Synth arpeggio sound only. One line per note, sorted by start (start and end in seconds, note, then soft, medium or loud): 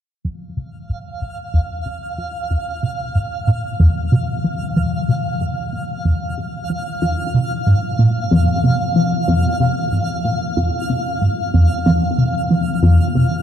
0.25 0.55 F2 medium
0.57 0.77 C3 medium
0.89 1.19 G#2 medium
1.22 1.34 A#2 medium
1.54 1.84 F2 medium
1.86 2.16 C3 medium
2.18 2.38 F3 medium
2.50 2.80 F2 medium
2.83 3.03 C3 medium
3.15 3.45 G#2 medium
3.47 3.59 A#2 medium
3.80 4.10 F2 medium
4.12 4.42 C3 medium
4.44 4.64 F3 medium
4.76 5.06 F2 medium
5.09 5.29 C3 medium
5.41 5.71 G#2 medium
5.73 5.85 A#2 medium
6.05 6.35 F2 medium
6.38 6.68 C3 medium
6.70 6.90 F3 medium
7.02 7.32 F2 medium
7.34 7.54 C3 medium
7.67 7.97 G#2 medium
7.99 8.11 A#2 medium
8.31 8.61 F2 medium
8.64 8.94 C3 medium
8.96 9.16 F3 medium
9.28 9.58 F2 medium
9.60 9.80 C3 medium
9.92 10.22 G#2 medium
10.25 10.37 A#2 medium
10.57 10.87 F2 medium
10.89 11.09 C3 medium
11.22 11.52 G#2 medium
11.54 11.74 F2 medium
11.86 12.16 F2 loud
12.18 12.48 C3 medium
12.51 12.71 F3 medium
12.83 13.13 F2 medium
13.15 13.35 C3 medium